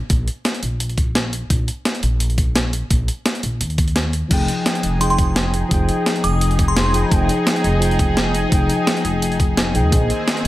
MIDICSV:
0, 0, Header, 1, 6, 480
1, 0, Start_track
1, 0, Key_signature, -4, "minor"
1, 0, Tempo, 350877
1, 135, Time_signature, 4, 2, 24, 8
1, 14330, End_track
2, 0, Start_track
2, 0, Title_t, "Synth bell"
2, 0, Program_c, 0, 98
2, 6851, Note_on_c, 0, 84, 82
2, 6935, Note_off_c, 0, 84, 0
2, 6981, Note_on_c, 0, 84, 73
2, 7054, Note_off_c, 0, 84, 0
2, 8533, Note_on_c, 0, 87, 88
2, 8826, Note_off_c, 0, 87, 0
2, 9141, Note_on_c, 0, 84, 87
2, 9811, Note_off_c, 0, 84, 0
2, 14330, End_track
3, 0, Start_track
3, 0, Title_t, "Tine electric piano"
3, 0, Program_c, 1, 4
3, 5857, Note_on_c, 1, 53, 76
3, 5881, Note_on_c, 1, 63, 73
3, 5904, Note_on_c, 1, 68, 71
3, 5929, Note_on_c, 1, 79, 85
3, 6125, Control_c, 1, 64, 127
3, 6802, Note_off_c, 1, 53, 0
3, 6818, Note_on_c, 1, 53, 75
3, 6822, Note_off_c, 1, 63, 0
3, 6833, Note_off_c, 1, 68, 0
3, 6840, Note_on_c, 1, 63, 68
3, 6845, Note_off_c, 1, 79, 0
3, 6865, Note_on_c, 1, 68, 65
3, 6889, Note_on_c, 1, 79, 78
3, 7761, Note_off_c, 1, 53, 0
3, 7777, Note_on_c, 1, 53, 81
3, 7781, Note_off_c, 1, 63, 0
3, 7793, Note_off_c, 1, 68, 0
3, 7801, Note_on_c, 1, 63, 73
3, 7805, Note_off_c, 1, 79, 0
3, 7825, Note_on_c, 1, 68, 75
3, 7849, Note_on_c, 1, 79, 90
3, 9450, Note_off_c, 1, 53, 0
3, 9461, Note_off_c, 1, 63, 0
3, 9473, Note_off_c, 1, 68, 0
3, 9477, Note_on_c, 1, 53, 79
3, 9486, Note_off_c, 1, 79, 0
3, 9489, Note_on_c, 1, 63, 67
3, 9501, Note_on_c, 1, 68, 71
3, 9512, Note_on_c, 1, 79, 82
3, 9682, Note_off_c, 1, 53, 0
3, 9698, Note_on_c, 1, 53, 82
3, 9706, Note_off_c, 1, 63, 0
3, 9711, Note_off_c, 1, 68, 0
3, 9717, Note_off_c, 1, 79, 0
3, 9723, Note_on_c, 1, 63, 74
3, 9745, Note_on_c, 1, 68, 72
3, 9769, Note_on_c, 1, 79, 88
3, 10645, Note_off_c, 1, 53, 0
3, 10661, Note_on_c, 1, 53, 75
3, 10662, Note_off_c, 1, 63, 0
3, 10674, Note_off_c, 1, 68, 0
3, 10685, Note_on_c, 1, 63, 69
3, 10686, Note_off_c, 1, 79, 0
3, 10708, Note_on_c, 1, 68, 69
3, 10731, Note_on_c, 1, 79, 84
3, 11603, Note_off_c, 1, 53, 0
3, 11619, Note_on_c, 1, 53, 82
3, 11623, Note_off_c, 1, 63, 0
3, 11635, Note_off_c, 1, 68, 0
3, 11644, Note_on_c, 1, 63, 74
3, 11647, Note_off_c, 1, 79, 0
3, 11668, Note_on_c, 1, 68, 76
3, 11692, Note_on_c, 1, 79, 92
3, 13291, Note_off_c, 1, 53, 0
3, 13303, Note_off_c, 1, 63, 0
3, 13315, Note_off_c, 1, 68, 0
3, 13317, Note_on_c, 1, 53, 71
3, 13327, Note_off_c, 1, 79, 0
3, 13329, Note_on_c, 1, 63, 63
3, 13341, Note_on_c, 1, 68, 62
3, 13352, Note_on_c, 1, 79, 78
3, 13445, Note_off_c, 1, 53, 0
3, 13451, Note_off_c, 1, 63, 0
3, 13457, Note_off_c, 1, 68, 0
3, 13463, Note_off_c, 1, 79, 0
3, 13540, Note_on_c, 1, 58, 76
3, 13565, Note_on_c, 1, 68, 73
3, 13588, Note_on_c, 1, 72, 72
3, 13595, Control_c, 1, 64, 0
3, 13612, Note_on_c, 1, 75, 88
3, 13868, Control_c, 1, 64, 127
3, 14330, Note_off_c, 1, 58, 0
3, 14330, Note_off_c, 1, 68, 0
3, 14330, Note_off_c, 1, 72, 0
3, 14330, Note_off_c, 1, 75, 0
3, 14330, End_track
4, 0, Start_track
4, 0, Title_t, "Analog synth pad"
4, 0, Program_c, 2, 89
4, 5892, Note_on_c, 2, 68, 86
4, 5894, Note_on_c, 2, 63, 71
4, 13519, Note_off_c, 2, 68, 0
4, 13520, Note_off_c, 2, 63, 0
4, 13575, Note_on_c, 2, 51, 78
4, 13575, Note_on_c, 2, 60, 70
4, 13575, Note_on_c, 2, 68, 82
4, 14330, Note_off_c, 2, 51, 0
4, 14330, Note_off_c, 2, 60, 0
4, 14330, Note_off_c, 2, 68, 0
4, 14330, End_track
5, 0, Start_track
5, 0, Title_t, "Upright bass"
5, 0, Program_c, 3, 32
5, 136, Note_on_c, 3, 34, 95
5, 353, Note_off_c, 3, 34, 0
5, 856, Note_on_c, 3, 34, 86
5, 1923, Note_off_c, 3, 34, 0
5, 2054, Note_on_c, 3, 34, 98
5, 2273, Note_off_c, 3, 34, 0
5, 2776, Note_on_c, 3, 34, 92
5, 3843, Note_off_c, 3, 34, 0
5, 3975, Note_on_c, 3, 34, 94
5, 4193, Note_off_c, 3, 34, 0
5, 4696, Note_on_c, 3, 34, 86
5, 4928, Note_off_c, 3, 34, 0
5, 4936, Note_on_c, 3, 39, 82
5, 5763, Note_off_c, 3, 39, 0
5, 5894, Note_on_c, 3, 29, 92
5, 6112, Note_off_c, 3, 29, 0
5, 6613, Note_on_c, 3, 29, 87
5, 7682, Note_off_c, 3, 29, 0
5, 7813, Note_on_c, 3, 29, 96
5, 8032, Note_off_c, 3, 29, 0
5, 8533, Note_on_c, 3, 29, 88
5, 9602, Note_off_c, 3, 29, 0
5, 9733, Note_on_c, 3, 29, 95
5, 9952, Note_off_c, 3, 29, 0
5, 10453, Note_on_c, 3, 29, 95
5, 11522, Note_off_c, 3, 29, 0
5, 11654, Note_on_c, 3, 29, 91
5, 11873, Note_off_c, 3, 29, 0
5, 12376, Note_on_c, 3, 29, 90
5, 13337, Note_on_c, 3, 36, 73
5, 13357, Note_off_c, 3, 29, 0
5, 13465, Note_off_c, 3, 36, 0
5, 13465, Note_on_c, 3, 39, 95
5, 13565, Note_off_c, 3, 39, 0
5, 13574, Note_on_c, 3, 34, 95
5, 13793, Note_off_c, 3, 34, 0
5, 14330, End_track
6, 0, Start_track
6, 0, Title_t, "Drums"
6, 136, Note_on_c, 9, 36, 106
6, 136, Note_on_c, 9, 42, 79
6, 272, Note_off_c, 9, 36, 0
6, 273, Note_off_c, 9, 42, 0
6, 377, Note_on_c, 9, 42, 60
6, 514, Note_off_c, 9, 42, 0
6, 616, Note_on_c, 9, 38, 105
6, 616, Note_on_c, 9, 42, 86
6, 745, Note_off_c, 9, 42, 0
6, 745, Note_on_c, 9, 42, 32
6, 753, Note_off_c, 9, 38, 0
6, 857, Note_off_c, 9, 42, 0
6, 857, Note_on_c, 9, 42, 61
6, 994, Note_off_c, 9, 42, 0
6, 1098, Note_on_c, 9, 42, 84
6, 1224, Note_off_c, 9, 42, 0
6, 1224, Note_on_c, 9, 42, 35
6, 1335, Note_on_c, 9, 36, 91
6, 1338, Note_off_c, 9, 42, 0
6, 1338, Note_on_c, 9, 42, 59
6, 1472, Note_off_c, 9, 36, 0
6, 1475, Note_off_c, 9, 42, 0
6, 1577, Note_on_c, 9, 38, 109
6, 1577, Note_on_c, 9, 42, 84
6, 1714, Note_off_c, 9, 38, 0
6, 1714, Note_off_c, 9, 42, 0
6, 1818, Note_on_c, 9, 42, 60
6, 1954, Note_off_c, 9, 42, 0
6, 2054, Note_on_c, 9, 36, 106
6, 2057, Note_on_c, 9, 42, 86
6, 2191, Note_off_c, 9, 36, 0
6, 2194, Note_off_c, 9, 42, 0
6, 2298, Note_on_c, 9, 42, 65
6, 2435, Note_off_c, 9, 42, 0
6, 2536, Note_on_c, 9, 38, 110
6, 2536, Note_on_c, 9, 42, 88
6, 2664, Note_off_c, 9, 42, 0
6, 2664, Note_on_c, 9, 42, 35
6, 2672, Note_off_c, 9, 38, 0
6, 2775, Note_off_c, 9, 42, 0
6, 2775, Note_on_c, 9, 42, 69
6, 2912, Note_off_c, 9, 42, 0
6, 3013, Note_on_c, 9, 42, 87
6, 3143, Note_off_c, 9, 42, 0
6, 3143, Note_on_c, 9, 42, 34
6, 3254, Note_off_c, 9, 42, 0
6, 3254, Note_on_c, 9, 36, 91
6, 3254, Note_on_c, 9, 42, 62
6, 3391, Note_off_c, 9, 36, 0
6, 3391, Note_off_c, 9, 42, 0
6, 3495, Note_on_c, 9, 38, 111
6, 3495, Note_on_c, 9, 42, 94
6, 3632, Note_off_c, 9, 38, 0
6, 3632, Note_off_c, 9, 42, 0
6, 3736, Note_on_c, 9, 42, 63
6, 3873, Note_off_c, 9, 42, 0
6, 3974, Note_on_c, 9, 36, 108
6, 3976, Note_on_c, 9, 42, 85
6, 4111, Note_off_c, 9, 36, 0
6, 4112, Note_off_c, 9, 42, 0
6, 4216, Note_on_c, 9, 42, 66
6, 4353, Note_off_c, 9, 42, 0
6, 4454, Note_on_c, 9, 38, 109
6, 4454, Note_on_c, 9, 42, 92
6, 4583, Note_off_c, 9, 42, 0
6, 4583, Note_on_c, 9, 42, 35
6, 4591, Note_off_c, 9, 38, 0
6, 4694, Note_off_c, 9, 42, 0
6, 4694, Note_on_c, 9, 42, 67
6, 4831, Note_off_c, 9, 42, 0
6, 4935, Note_on_c, 9, 42, 93
6, 5061, Note_off_c, 9, 42, 0
6, 5061, Note_on_c, 9, 42, 36
6, 5173, Note_on_c, 9, 36, 95
6, 5174, Note_off_c, 9, 42, 0
6, 5174, Note_on_c, 9, 42, 63
6, 5303, Note_off_c, 9, 42, 0
6, 5303, Note_on_c, 9, 42, 34
6, 5310, Note_off_c, 9, 36, 0
6, 5413, Note_off_c, 9, 42, 0
6, 5413, Note_on_c, 9, 38, 111
6, 5413, Note_on_c, 9, 42, 95
6, 5550, Note_off_c, 9, 38, 0
6, 5550, Note_off_c, 9, 42, 0
6, 5653, Note_on_c, 9, 42, 62
6, 5790, Note_off_c, 9, 42, 0
6, 5893, Note_on_c, 9, 36, 111
6, 5894, Note_on_c, 9, 42, 89
6, 5894, Note_on_c, 9, 49, 68
6, 6030, Note_off_c, 9, 36, 0
6, 6031, Note_off_c, 9, 42, 0
6, 6031, Note_off_c, 9, 49, 0
6, 6134, Note_on_c, 9, 42, 67
6, 6271, Note_off_c, 9, 42, 0
6, 6373, Note_on_c, 9, 38, 109
6, 6373, Note_on_c, 9, 42, 93
6, 6501, Note_off_c, 9, 42, 0
6, 6501, Note_on_c, 9, 42, 35
6, 6510, Note_off_c, 9, 38, 0
6, 6612, Note_off_c, 9, 42, 0
6, 6612, Note_on_c, 9, 42, 66
6, 6749, Note_off_c, 9, 42, 0
6, 6852, Note_on_c, 9, 42, 91
6, 6979, Note_off_c, 9, 42, 0
6, 6979, Note_on_c, 9, 42, 35
6, 7093, Note_off_c, 9, 42, 0
6, 7093, Note_on_c, 9, 36, 100
6, 7093, Note_on_c, 9, 42, 61
6, 7230, Note_off_c, 9, 36, 0
6, 7230, Note_off_c, 9, 42, 0
6, 7332, Note_on_c, 9, 38, 115
6, 7332, Note_on_c, 9, 42, 95
6, 7469, Note_off_c, 9, 38, 0
6, 7469, Note_off_c, 9, 42, 0
6, 7574, Note_on_c, 9, 42, 65
6, 7711, Note_off_c, 9, 42, 0
6, 7813, Note_on_c, 9, 36, 120
6, 7813, Note_on_c, 9, 42, 84
6, 7950, Note_off_c, 9, 36, 0
6, 7950, Note_off_c, 9, 42, 0
6, 8052, Note_on_c, 9, 42, 63
6, 8189, Note_off_c, 9, 42, 0
6, 8294, Note_on_c, 9, 38, 117
6, 8294, Note_on_c, 9, 42, 91
6, 8423, Note_off_c, 9, 42, 0
6, 8423, Note_on_c, 9, 42, 35
6, 8431, Note_off_c, 9, 38, 0
6, 8536, Note_off_c, 9, 42, 0
6, 8536, Note_on_c, 9, 42, 63
6, 8672, Note_off_c, 9, 42, 0
6, 8774, Note_on_c, 9, 42, 86
6, 8903, Note_off_c, 9, 42, 0
6, 8903, Note_on_c, 9, 42, 36
6, 9014, Note_off_c, 9, 42, 0
6, 9014, Note_on_c, 9, 36, 104
6, 9014, Note_on_c, 9, 42, 59
6, 9150, Note_off_c, 9, 36, 0
6, 9151, Note_off_c, 9, 42, 0
6, 9255, Note_on_c, 9, 38, 120
6, 9255, Note_on_c, 9, 42, 88
6, 9391, Note_off_c, 9, 38, 0
6, 9391, Note_off_c, 9, 42, 0
6, 9495, Note_on_c, 9, 42, 64
6, 9632, Note_off_c, 9, 42, 0
6, 9733, Note_on_c, 9, 36, 121
6, 9736, Note_on_c, 9, 42, 83
6, 9870, Note_off_c, 9, 36, 0
6, 9873, Note_off_c, 9, 42, 0
6, 9976, Note_on_c, 9, 42, 61
6, 10113, Note_off_c, 9, 42, 0
6, 10215, Note_on_c, 9, 38, 126
6, 10215, Note_on_c, 9, 42, 91
6, 10343, Note_off_c, 9, 42, 0
6, 10343, Note_on_c, 9, 42, 33
6, 10352, Note_off_c, 9, 38, 0
6, 10456, Note_off_c, 9, 42, 0
6, 10456, Note_on_c, 9, 42, 64
6, 10593, Note_off_c, 9, 42, 0
6, 10696, Note_on_c, 9, 42, 83
6, 10825, Note_off_c, 9, 42, 0
6, 10825, Note_on_c, 9, 42, 34
6, 10934, Note_on_c, 9, 36, 106
6, 10937, Note_off_c, 9, 42, 0
6, 10937, Note_on_c, 9, 42, 60
6, 11070, Note_off_c, 9, 36, 0
6, 11073, Note_off_c, 9, 42, 0
6, 11175, Note_on_c, 9, 38, 124
6, 11175, Note_on_c, 9, 42, 89
6, 11312, Note_off_c, 9, 38, 0
6, 11312, Note_off_c, 9, 42, 0
6, 11416, Note_on_c, 9, 42, 59
6, 11553, Note_off_c, 9, 42, 0
6, 11654, Note_on_c, 9, 36, 117
6, 11655, Note_on_c, 9, 42, 82
6, 11791, Note_off_c, 9, 36, 0
6, 11792, Note_off_c, 9, 42, 0
6, 11895, Note_on_c, 9, 42, 61
6, 12032, Note_off_c, 9, 42, 0
6, 12137, Note_on_c, 9, 38, 119
6, 12137, Note_on_c, 9, 42, 85
6, 12265, Note_off_c, 9, 42, 0
6, 12265, Note_on_c, 9, 42, 31
6, 12274, Note_off_c, 9, 38, 0
6, 12378, Note_off_c, 9, 42, 0
6, 12378, Note_on_c, 9, 42, 64
6, 12514, Note_off_c, 9, 42, 0
6, 12617, Note_on_c, 9, 42, 80
6, 12746, Note_off_c, 9, 42, 0
6, 12746, Note_on_c, 9, 42, 33
6, 12855, Note_on_c, 9, 36, 98
6, 12859, Note_off_c, 9, 42, 0
6, 12859, Note_on_c, 9, 42, 56
6, 12992, Note_off_c, 9, 36, 0
6, 12996, Note_off_c, 9, 42, 0
6, 13097, Note_on_c, 9, 38, 119
6, 13097, Note_on_c, 9, 42, 84
6, 13234, Note_off_c, 9, 38, 0
6, 13234, Note_off_c, 9, 42, 0
6, 13336, Note_on_c, 9, 42, 61
6, 13473, Note_off_c, 9, 42, 0
6, 13575, Note_on_c, 9, 36, 118
6, 13577, Note_on_c, 9, 42, 84
6, 13712, Note_off_c, 9, 36, 0
6, 13714, Note_off_c, 9, 42, 0
6, 13816, Note_on_c, 9, 42, 61
6, 13953, Note_off_c, 9, 42, 0
6, 14057, Note_on_c, 9, 38, 117
6, 14057, Note_on_c, 9, 42, 88
6, 14185, Note_off_c, 9, 42, 0
6, 14185, Note_on_c, 9, 42, 32
6, 14194, Note_off_c, 9, 38, 0
6, 14322, Note_off_c, 9, 42, 0
6, 14330, End_track
0, 0, End_of_file